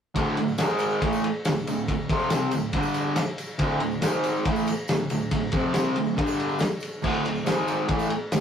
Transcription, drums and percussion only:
0.16 kick medium
0.16 ride medium
0.16 tambourine soft
0.36 ride medium
0.36 tambourine soft
0.48 tambourine soft
0.58 snare loud
0.58 ride loud
0.58 tambourine loud
0.69 tambourine soft
0.79 ride medium
0.79 tambourine medium
0.90 tambourine soft
1.02 kick loud
1.02 ride loud
1.02 tambourine soft
1.13 tambourine medium
1.24 ride medium
1.45 snare loud
1.45 ride loud
1.45 tambourine loud
1.57 tambourine soft
1.67 ride medium
1.67 tambourine medium
1.78 tambourine soft
1.87 kick medium
1.87 ride medium
1.87 tambourine soft
2.09 kick loud
2.09 ride medium
2.09 tambourine soft
2.20 tambourine soft
2.30 snare loud
2.30 ride medium
2.30 tambourine loud
2.40 tambourine soft
2.51 ride medium
2.51 tambourine medium
2.61 tambourine soft
2.72 kick medium
2.72 ride medium
2.72 tambourine soft
2.83 tambourine medium
2.94 ride medium
2.94 tambourine medium
3.16 snare loud
3.16 ride medium
3.16 tambourine loud
3.27 tambourine soft
3.38 ride medium
3.38 tambourine medium
3.49 tambourine soft
3.59 kick loud
3.59 ride medium
3.59 tambourine soft
3.80 ride medium
3.80 tambourine soft
3.91 tambourine soft
4.02 snare loud
4.02 ride loud
4.02 tambourine loud
4.13 tambourine soft
4.24 ride medium
4.24 tambourine medium
4.35 tambourine soft
4.45 kick loud
4.45 ride loud
4.45 tambourine soft
4.56 tambourine medium
4.67 ride medium
4.67 tambourine medium
4.88 snare loud
4.88 ride loud
4.88 tambourine medium
5.10 ride medium
5.10 tambourine medium
5.21 tambourine soft
5.31 kick medium
5.31 ride loud
5.31 tambourine soft
5.52 kick loud
5.52 ride medium
5.52 tambourine soft
5.74 snare loud
5.74 ride medium
5.74 tambourine medium
5.85 tambourine soft
5.96 ride medium
6.05 tambourine soft
6.16 kick loud
6.16 ride medium
6.16 tambourine soft
6.27 tambourine medium
6.40 ride medium
6.49 tambourine soft
6.59 snare loud
6.59 ride medium
6.59 tambourine medium
6.71 tambourine soft
6.80 ride medium
6.80 tambourine medium
6.91 tambourine soft
7.02 kick loud
7.02 tambourine soft
7.02 crash loud
7.24 ride medium
7.24 tambourine soft
7.35 tambourine soft
7.46 snare loud
7.46 ride medium
7.46 tambourine loud
7.68 ride medium
7.68 tambourine medium
7.88 kick loud
7.88 ride medium
7.88 tambourine soft
7.99 tambourine medium
8.10 ride medium
8.32 snare loud
8.32 ride medium
8.32 tambourine loud

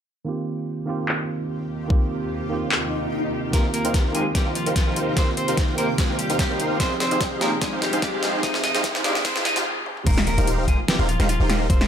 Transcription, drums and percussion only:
1.09 clap medium
1.90 kick loud
2.72 clap loud
3.53 kick medium
3.53 snare soft
3.53 closed hi-hat medium
3.74 closed hi-hat medium
3.85 closed hi-hat medium
3.94 kick medium
3.94 snare soft
3.94 closed hi-hat medium
4.15 closed hi-hat medium
4.35 kick loud
4.35 snare medium
4.35 closed hi-hat medium
4.55 closed hi-hat medium
4.66 closed hi-hat medium
4.76 kick loud
4.76 snare medium
4.76 closed hi-hat medium
4.96 closed hi-hat medium
5.17 kick medium
5.17 snare medium
5.17 closed hi-hat medium
5.37 closed hi-hat medium
5.48 closed hi-hat medium
5.57 kick medium
5.57 snare medium
5.57 closed hi-hat medium
5.78 closed hi-hat medium
5.98 kick loud
5.98 snare medium
5.98 closed hi-hat medium
6.19 closed hi-hat medium
6.30 closed hi-hat medium
6.39 kick loud
6.39 snare medium
6.39 closed hi-hat medium
6.60 closed hi-hat medium
6.80 kick loud
6.80 snare medium
6.80 closed hi-hat medium
7.00 snare medium
7.00 closed hi-hat medium
7.11 closed hi-hat medium
7.21 kick loud
7.21 snare medium
7.21 closed hi-hat medium
7.41 snare medium
7.41 closed hi-hat medium
7.62 kick loud
7.62 snare medium
7.62 closed hi-hat medium
7.82 snare medium
7.82 closed hi-hat medium
7.93 closed hi-hat medium
8.02 kick loud
8.02 snare medium
8.02 closed hi-hat medium
8.23 snare medium
8.23 closed hi-hat medium
8.43 kick loud
8.43 snare medium
8.43 closed hi-hat medium
8.54 snare medium
8.64 snare medium
8.64 closed hi-hat medium
8.75 snare medium
8.75 closed hi-hat medium
8.84 kick loud
8.84 snare medium
8.84 closed hi-hat medium
8.95 snare medium
9.04 snare loud
9.04 closed hi-hat medium
9.15 snare medium
9.25 kick loud
9.25 snare loud
9.25 closed hi-hat medium
9.36 snare medium
9.45 snare loud
9.45 closed hi-hat medium
9.56 snare medium
9.56 closed hi-hat medium
9.86 high tom medium
9.97 mid tom medium
10.07 kick loud
10.07 closed hi-hat medium
10.07 crash loud
10.18 snare medium
10.27 closed hi-hat medium
10.38 closed hi-hat medium
10.47 closed hi-hat medium
10.68 kick medium
10.68 closed hi-hat medium
10.88 snare loud
10.88 closed hi-hat medium
11.09 closed hi-hat medium
11.20 snare medium
11.20 closed hi-hat medium
11.29 closed hi-hat medium
11.50 snare medium
11.50 closed hi-hat medium
11.70 kick loud
11.70 closed hi-hat medium
11.81 snare medium

